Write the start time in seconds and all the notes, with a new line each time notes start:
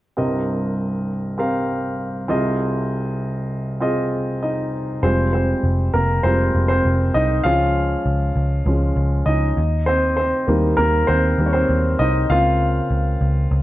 0.17 C2 G2 C4 G4 A#4 D#5
1.38 C4 G4 A#4 F5
2.28 C2 C3 C4 F4 G#4 D#5
3.80 C4 F4 G#4 D#5
4.43 D#4 D#5
5.03 F1 G3 G#3 C4 F4 C5
5.33 C4 C5
5.64 F1
5.94 F1 A#3 A#4
6.23 F1 G3 G#3 C4 F4 C5
6.55 F1
6.68 C4 C5
6.85 F1
7.14 C2 D#4 D#5
7.44 C#2 F3 G#3 C#4 F4 F5
8.06 C#2
8.36 C#2
8.66 C#2 F3 G#3 C#4
8.96 C#2
9.26 C#2 D#4 D#5
9.57 D#2
9.86 C4 C5
10.17 C4 C5
10.47 D#2 D#3 G3 A#3
10.77 D#2 A#3 A#4
11.07 D#2 C4 C5
11.38 D#2 D#3 G3 A#3
11.46 C#5
11.53 C4 C5
11.69 D#2
11.99 C2 D#4 D#5
12.30 C#2 C#3 A#3 C4 F4 F5
12.91 C#2
13.21 C#2
13.51 C#2